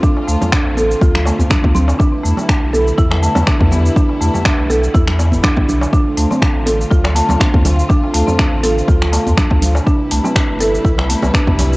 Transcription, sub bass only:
X:1
M:4/4
L:1/16
Q:"Swing 16ths" 1/4=122
K:Ddor
V:1 name="Sub bass" clef=bass
z2 D,, z2 A,,,2 z D,,2 z D,, z D,,2 z | z2 E,, z2 B,,,2 z E,,2 z E,, z E,,2 z | z2 E,, z2 B,,,2 z E,,3 E,,, z B,,,2 z | z2 D,, z2 A,,,2 z D,,2 z D,, z D,,2 z |
z2 D,, z2 A,,,2 z D,,2 z D,, z D,,2 z | z2 C,, z2 G,,,2 z C,,2 z C,, z C,,2 z |]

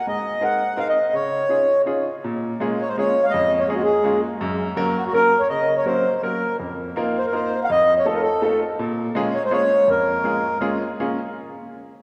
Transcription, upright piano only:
X:1
M:3/4
L:1/8
Q:"Swing" 1/4=165
K:Db
V:1 name="Upright piano"
A,,2 [CEAB] z [CEAB] z | D,2 [DEFA] z [DEFA] z | [K:Bbm] B,,2 [A,B,DFA] z [A,B,DFA] z | F,,2 [A,B,DFA] z [A,B,DFA] z |
G,,2 [G,B,DGB] z [G,B,DGB] z | D,2 [G,B,DGB] z [G,B,DGB] z | F,,2 [B,CEFB] z [B,CEFB] z | F,,2 [=A,CEF=A] z [A,CEFA] z |
B,,2 [A,B,DFA] z [A,B,DFA] z | F,,2 [A,B,DFA] z [A,B,DFA] z | [B,DFA] z4 z |]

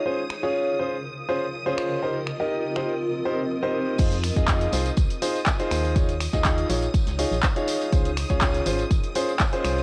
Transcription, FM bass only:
X:1
M:4/4
L:1/16
Q:1/4=122
K:Fm
V:1 name="FM bass" clef=bass
z16 | z16 | F,,3 F,,3 C,, z C,, z4 z E,,2- | E,,3 E,,3 B,,, z2 D,, z B,,, z4 |
D,,3 D,,3 A,,, z A,,, z4 z C,,2 |]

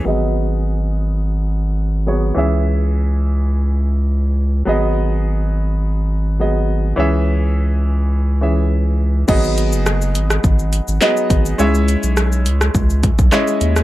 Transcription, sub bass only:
X:1
M:4/4
L:1/16
Q:1/4=104
K:G#m
V:1 name="Sub bass" clef=bass
G,,,16 | C,,16 | G,,,16 | C,,16 |
G,,,3 F,,,3 G,,,2 G,,,3 G,,, z2 G,,,2 | C,,3 B,,,3 C,,2 C,,3 B,,, z2 D,,2 |]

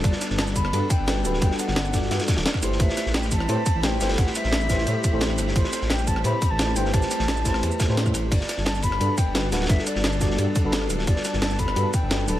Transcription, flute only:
X:1
M:4/4
L:1/16
Q:1/4=174
K:G
V:1 name="Flute"
d4 a2 b4 g6 | g2 f8 z6 | e4 g2 a6 g4 | f2 e12 z2 |
c4 g2 a2 b3 a3 g2 | a12 z4 | d4 a2 b4 g4 f2 | e2 d12 z2 |
d4 a2 b4 g4 a2 |]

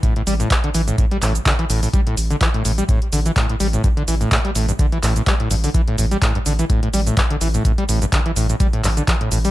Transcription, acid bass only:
X:1
M:4/4
L:1/16
Q:"Swing 16ths" 1/4=126
K:Gmix
V:1 name="Acid bass" clef=bass
A,, A,, G, A,, z D, E, A,, z G, A,, z D, E, A,, A,, | G, A,, z D, E, A,, A,, G, A,, z D, E, A,, A,, G, A,, | G,, D, E, A,, z G, A,, G,, D, E, A,, A,, G, A,, G,, D, | E, A,, A,, G, A,, G,, D, E, A,, A,, G, A,, G,, D, E, A,, |
z G, A,, G,, D, E, A,, A,, G, A,, G,, D, E, A,, A,, G, |]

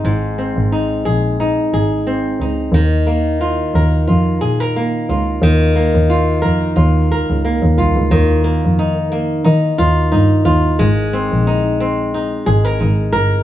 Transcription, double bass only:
X:1
M:4/4
L:1/16
Q:"Swing 16ths" 1/4=89
K:Ebmix
V:1 name="Double bass" clef=bass
A,,,3 A,,,3 B,,,3 z A,,,4 D,,2 | E,,4- E,, z E,,2 F,,2 B,,4 D,,2 | E,,3 E,,3 F,,2 E,,2 D,, D,, z E,, C,, D,, | E,,3 F,,4- F,, E,2 E,,2 G,,2 E,,2 |
A,,,3 B,,,6 z A,,,2 A,,,2 G,,,2 |]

